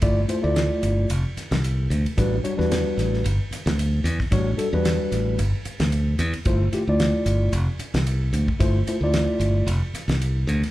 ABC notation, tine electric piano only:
X:1
M:4/4
L:1/16
Q:"Swing 16ths" 1/4=112
K:Aphr
V:1 name="Tine electric piano"
[A,EFd] z [A,EFc] [A,EFd]4- [A,EFd] z8 | [G,D^F=B] z [G,DF^c] [G,DFB]4- [G,DFB] z8 | [G,D^F^c] z [G,DFA] [G,DF=B]4- [G,DFB] z8 | [A,EFc] z [A,EFG] [A,EFd]4- [A,EFd] z8 |
[A,EFc] z [A,EFc] [A,EFd]4- [A,EFd] z8 |]